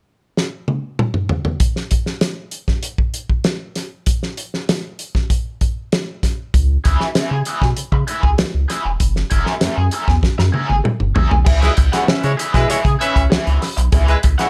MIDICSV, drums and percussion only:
0, 0, Header, 1, 2, 480
1, 0, Start_track
1, 0, Tempo, 616016
1, 1251, Time_signature, 4, 2, 24, 8
1, 11296, End_track
2, 0, Start_track
2, 0, Title_t, "Drums"
2, 291, Note_on_c, 9, 38, 51
2, 369, Note_off_c, 9, 38, 0
2, 529, Note_on_c, 9, 48, 66
2, 607, Note_off_c, 9, 48, 0
2, 773, Note_on_c, 9, 47, 86
2, 850, Note_off_c, 9, 47, 0
2, 888, Note_on_c, 9, 45, 68
2, 966, Note_off_c, 9, 45, 0
2, 1008, Note_on_c, 9, 43, 83
2, 1086, Note_off_c, 9, 43, 0
2, 1128, Note_on_c, 9, 43, 81
2, 1206, Note_off_c, 9, 43, 0
2, 1246, Note_on_c, 9, 42, 77
2, 1249, Note_on_c, 9, 36, 108
2, 1324, Note_off_c, 9, 42, 0
2, 1327, Note_off_c, 9, 36, 0
2, 1373, Note_on_c, 9, 38, 31
2, 1451, Note_off_c, 9, 38, 0
2, 1486, Note_on_c, 9, 42, 77
2, 1493, Note_on_c, 9, 36, 77
2, 1564, Note_off_c, 9, 42, 0
2, 1571, Note_off_c, 9, 36, 0
2, 1607, Note_on_c, 9, 38, 30
2, 1685, Note_off_c, 9, 38, 0
2, 1723, Note_on_c, 9, 42, 81
2, 1724, Note_on_c, 9, 38, 98
2, 1801, Note_off_c, 9, 42, 0
2, 1802, Note_off_c, 9, 38, 0
2, 1959, Note_on_c, 9, 42, 66
2, 2037, Note_off_c, 9, 42, 0
2, 2087, Note_on_c, 9, 36, 76
2, 2087, Note_on_c, 9, 38, 35
2, 2165, Note_off_c, 9, 36, 0
2, 2165, Note_off_c, 9, 38, 0
2, 2202, Note_on_c, 9, 42, 85
2, 2280, Note_off_c, 9, 42, 0
2, 2325, Note_on_c, 9, 36, 84
2, 2403, Note_off_c, 9, 36, 0
2, 2444, Note_on_c, 9, 42, 68
2, 2522, Note_off_c, 9, 42, 0
2, 2568, Note_on_c, 9, 36, 74
2, 2646, Note_off_c, 9, 36, 0
2, 2682, Note_on_c, 9, 42, 65
2, 2685, Note_on_c, 9, 38, 93
2, 2760, Note_off_c, 9, 42, 0
2, 2763, Note_off_c, 9, 38, 0
2, 2926, Note_on_c, 9, 42, 75
2, 2929, Note_on_c, 9, 38, 34
2, 3004, Note_off_c, 9, 42, 0
2, 3007, Note_off_c, 9, 38, 0
2, 3166, Note_on_c, 9, 42, 86
2, 3170, Note_on_c, 9, 36, 100
2, 3244, Note_off_c, 9, 42, 0
2, 3248, Note_off_c, 9, 36, 0
2, 3294, Note_on_c, 9, 38, 31
2, 3372, Note_off_c, 9, 38, 0
2, 3408, Note_on_c, 9, 42, 70
2, 3486, Note_off_c, 9, 42, 0
2, 3537, Note_on_c, 9, 38, 31
2, 3615, Note_off_c, 9, 38, 0
2, 3654, Note_on_c, 9, 42, 80
2, 3655, Note_on_c, 9, 38, 107
2, 3732, Note_off_c, 9, 42, 0
2, 3733, Note_off_c, 9, 38, 0
2, 3888, Note_on_c, 9, 42, 69
2, 3966, Note_off_c, 9, 42, 0
2, 4012, Note_on_c, 9, 36, 79
2, 4015, Note_on_c, 9, 38, 34
2, 4090, Note_off_c, 9, 36, 0
2, 4093, Note_off_c, 9, 38, 0
2, 4130, Note_on_c, 9, 36, 88
2, 4130, Note_on_c, 9, 42, 80
2, 4208, Note_off_c, 9, 36, 0
2, 4208, Note_off_c, 9, 42, 0
2, 4371, Note_on_c, 9, 42, 63
2, 4374, Note_on_c, 9, 36, 76
2, 4449, Note_off_c, 9, 42, 0
2, 4452, Note_off_c, 9, 36, 0
2, 4616, Note_on_c, 9, 42, 72
2, 4619, Note_on_c, 9, 38, 103
2, 4694, Note_off_c, 9, 42, 0
2, 4697, Note_off_c, 9, 38, 0
2, 4855, Note_on_c, 9, 36, 83
2, 4856, Note_on_c, 9, 42, 75
2, 4859, Note_on_c, 9, 38, 35
2, 4933, Note_off_c, 9, 36, 0
2, 4934, Note_off_c, 9, 42, 0
2, 4937, Note_off_c, 9, 38, 0
2, 5096, Note_on_c, 9, 36, 104
2, 5097, Note_on_c, 9, 42, 83
2, 5174, Note_off_c, 9, 36, 0
2, 5174, Note_off_c, 9, 42, 0
2, 5337, Note_on_c, 9, 42, 74
2, 5342, Note_on_c, 9, 36, 76
2, 5415, Note_off_c, 9, 42, 0
2, 5420, Note_off_c, 9, 36, 0
2, 5458, Note_on_c, 9, 38, 36
2, 5536, Note_off_c, 9, 38, 0
2, 5573, Note_on_c, 9, 42, 80
2, 5574, Note_on_c, 9, 38, 98
2, 5651, Note_off_c, 9, 42, 0
2, 5652, Note_off_c, 9, 38, 0
2, 5808, Note_on_c, 9, 42, 66
2, 5886, Note_off_c, 9, 42, 0
2, 5935, Note_on_c, 9, 36, 83
2, 5940, Note_on_c, 9, 38, 37
2, 6013, Note_off_c, 9, 36, 0
2, 6018, Note_off_c, 9, 38, 0
2, 6051, Note_on_c, 9, 42, 84
2, 6129, Note_off_c, 9, 42, 0
2, 6173, Note_on_c, 9, 36, 75
2, 6250, Note_off_c, 9, 36, 0
2, 6293, Note_on_c, 9, 42, 62
2, 6371, Note_off_c, 9, 42, 0
2, 6415, Note_on_c, 9, 36, 76
2, 6493, Note_off_c, 9, 36, 0
2, 6532, Note_on_c, 9, 42, 74
2, 6536, Note_on_c, 9, 38, 111
2, 6610, Note_off_c, 9, 42, 0
2, 6614, Note_off_c, 9, 38, 0
2, 6777, Note_on_c, 9, 42, 74
2, 6780, Note_on_c, 9, 38, 31
2, 6855, Note_off_c, 9, 42, 0
2, 6857, Note_off_c, 9, 38, 0
2, 7012, Note_on_c, 9, 42, 86
2, 7015, Note_on_c, 9, 36, 113
2, 7090, Note_off_c, 9, 42, 0
2, 7093, Note_off_c, 9, 36, 0
2, 7138, Note_on_c, 9, 38, 34
2, 7216, Note_off_c, 9, 38, 0
2, 7251, Note_on_c, 9, 42, 77
2, 7260, Note_on_c, 9, 36, 88
2, 7328, Note_off_c, 9, 42, 0
2, 7337, Note_off_c, 9, 36, 0
2, 7374, Note_on_c, 9, 38, 34
2, 7452, Note_off_c, 9, 38, 0
2, 7489, Note_on_c, 9, 42, 85
2, 7490, Note_on_c, 9, 38, 93
2, 7566, Note_off_c, 9, 42, 0
2, 7568, Note_off_c, 9, 38, 0
2, 7725, Note_on_c, 9, 42, 72
2, 7803, Note_off_c, 9, 42, 0
2, 7853, Note_on_c, 9, 36, 80
2, 7858, Note_on_c, 9, 38, 38
2, 7931, Note_off_c, 9, 36, 0
2, 7936, Note_off_c, 9, 38, 0
2, 7970, Note_on_c, 9, 36, 91
2, 7975, Note_on_c, 9, 38, 49
2, 8048, Note_off_c, 9, 36, 0
2, 8053, Note_off_c, 9, 38, 0
2, 8095, Note_on_c, 9, 38, 48
2, 8173, Note_off_c, 9, 38, 0
2, 8210, Note_on_c, 9, 48, 62
2, 8288, Note_off_c, 9, 48, 0
2, 8334, Note_on_c, 9, 48, 53
2, 8412, Note_off_c, 9, 48, 0
2, 8455, Note_on_c, 9, 47, 82
2, 8533, Note_off_c, 9, 47, 0
2, 8572, Note_on_c, 9, 45, 65
2, 8650, Note_off_c, 9, 45, 0
2, 8693, Note_on_c, 9, 43, 94
2, 8771, Note_off_c, 9, 43, 0
2, 8815, Note_on_c, 9, 43, 76
2, 8893, Note_off_c, 9, 43, 0
2, 8932, Note_on_c, 9, 49, 93
2, 8933, Note_on_c, 9, 36, 114
2, 9010, Note_off_c, 9, 49, 0
2, 9011, Note_off_c, 9, 36, 0
2, 9056, Note_on_c, 9, 42, 34
2, 9061, Note_on_c, 9, 38, 36
2, 9134, Note_off_c, 9, 42, 0
2, 9139, Note_off_c, 9, 38, 0
2, 9170, Note_on_c, 9, 42, 73
2, 9178, Note_on_c, 9, 36, 86
2, 9248, Note_off_c, 9, 42, 0
2, 9256, Note_off_c, 9, 36, 0
2, 9296, Note_on_c, 9, 42, 49
2, 9301, Note_on_c, 9, 38, 40
2, 9374, Note_off_c, 9, 42, 0
2, 9379, Note_off_c, 9, 38, 0
2, 9415, Note_on_c, 9, 38, 102
2, 9493, Note_off_c, 9, 38, 0
2, 9532, Note_on_c, 9, 42, 34
2, 9610, Note_off_c, 9, 42, 0
2, 9656, Note_on_c, 9, 42, 70
2, 9734, Note_off_c, 9, 42, 0
2, 9773, Note_on_c, 9, 36, 86
2, 9778, Note_on_c, 9, 42, 45
2, 9783, Note_on_c, 9, 38, 35
2, 9851, Note_off_c, 9, 36, 0
2, 9856, Note_off_c, 9, 42, 0
2, 9861, Note_off_c, 9, 38, 0
2, 9894, Note_on_c, 9, 42, 83
2, 9972, Note_off_c, 9, 42, 0
2, 10012, Note_on_c, 9, 36, 86
2, 10019, Note_on_c, 9, 42, 33
2, 10089, Note_off_c, 9, 36, 0
2, 10097, Note_off_c, 9, 42, 0
2, 10137, Note_on_c, 9, 42, 71
2, 10215, Note_off_c, 9, 42, 0
2, 10254, Note_on_c, 9, 36, 77
2, 10258, Note_on_c, 9, 42, 47
2, 10332, Note_off_c, 9, 36, 0
2, 10336, Note_off_c, 9, 42, 0
2, 10378, Note_on_c, 9, 38, 105
2, 10456, Note_off_c, 9, 38, 0
2, 10495, Note_on_c, 9, 42, 34
2, 10573, Note_off_c, 9, 42, 0
2, 10613, Note_on_c, 9, 46, 81
2, 10616, Note_on_c, 9, 38, 36
2, 10691, Note_off_c, 9, 46, 0
2, 10694, Note_off_c, 9, 38, 0
2, 10734, Note_on_c, 9, 42, 52
2, 10812, Note_off_c, 9, 42, 0
2, 10848, Note_on_c, 9, 42, 81
2, 10851, Note_on_c, 9, 36, 108
2, 10926, Note_off_c, 9, 42, 0
2, 10929, Note_off_c, 9, 36, 0
2, 10972, Note_on_c, 9, 42, 33
2, 11050, Note_off_c, 9, 42, 0
2, 11089, Note_on_c, 9, 42, 88
2, 11097, Note_on_c, 9, 36, 89
2, 11167, Note_off_c, 9, 42, 0
2, 11174, Note_off_c, 9, 36, 0
2, 11211, Note_on_c, 9, 42, 53
2, 11216, Note_on_c, 9, 38, 35
2, 11289, Note_off_c, 9, 42, 0
2, 11294, Note_off_c, 9, 38, 0
2, 11296, End_track
0, 0, End_of_file